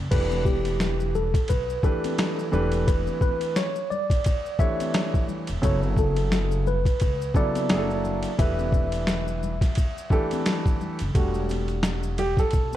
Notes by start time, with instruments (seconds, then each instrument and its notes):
0.11 upright bass E1, grand piano E3 A3 D4 G4 B4, tine electric piano B4, kick, crash, ride, maracas
0.31 high conga, maracas
0.45 tine electric piano G4, kick, high conga, maracas
0.65 ride, maracas
0.80 snare, hi-hat pedal, ride, maracas
1.00 maracas
1.15 tine electric piano A4, low conga, maracas
1.34 kick, ride, maracas
1.48 upright bass B1, tine electric piano B4, kick, ride, maracas
1.70 maracas
1.83 grand piano E3 A3 D4 G4 B4, tine electric piano A4, kick, maracas
2.04 ride, high conga, maracas
2.18 snare, hi-hat pedal, ride, low conga, maracas
2.39 maracas
2.52 upright bass E1, grand piano E3 A3 D4 G4 B4, low conga, maracas
2.72 ride, maracas
2.88 tine electric piano B4, kick, ride, maracas
3.07 high conga, maracas
3.21 tine electric piano B4, kick, high conga, maracas
3.41 ride, maracas
3.56 tine electric piano C#5, snare, hi-hat pedal, ride, maracas
3.76 maracas
3.90 tine electric piano D5, low conga, maracas
4.10 kick, ride, maracas
4.24 kick, ride, maracas
4.46 maracas
4.59 grand piano E3 A3 D4 G4 C#5, tine electric piano E5, kick, maracas
4.80 ride, high conga, maracas
4.94 snare, hi-hat pedal, ride, low conga, maracas
5.14 kick, maracas
5.29 low conga, maracas
5.47 upright bass E1, ride, maracas
5.62 upright bass F#1, grand piano C#3 F#3 B3 E4 A4, tine electric piano C#5, kick, ride, maracas
5.83 high conga, maracas
5.96 tine electric piano A4, kick, high conga, maracas
6.16 ride, maracas
6.32 snare, hi-hat pedal, ride, maracas
6.51 maracas
6.67 tine electric piano B4, low conga, maracas
6.85 kick, ride, maracas
7.00 upright bass C#2, kick, ride, maracas
7.22 maracas
7.34 grand piano C#3 F#3 B3 E4 A4, tine electric piano D5, kick, maracas
7.55 ride, high conga, maracas
7.69 upright bass F#1, grand piano F#3 A#3 D4 E4 G#4, snare, hi-hat pedal, ride, low conga, maracas
7.77 grand piano A4
7.90 maracas
8.05 low conga, maracas
8.23 ride, maracas
8.38 upright bass E1, grand piano E3 A3 D4 G4 B4, tine electric piano E5, kick, ride, maracas
8.59 high conga, maracas
8.72 kick, high conga, maracas
8.92 ride, maracas
9.07 snare, hi-hat pedal, ride, maracas
9.28 maracas
9.43 low conga, maracas
9.61 kick, snare, ride, maracas
9.75 kick, ride, maracas
9.98 maracas
10.10 grand piano E3 A3 D4 G4 A4, kick, maracas
10.31 ride, high conga, maracas
10.46 snare, hi-hat pedal, ride, low conga, maracas
10.66 kick, maracas
10.81 low conga, maracas
10.99 upright bass F#1, ride, maracas
11.15 upright bass E1, grand piano G3 A3 D4 F#4, kick, ride, maracas
11.34 maracas
11.49 ride, high conga, maracas
11.68 ride, maracas
11.83 snare, hi-hat pedal, ride, maracas
12.03 maracas
12.18 grand piano G4, ride, low conga, maracas
12.37 grand piano A4, kick, snare, maracas
12.51 upright bass B1, kick, ride, maracas
12.73 high conga, maracas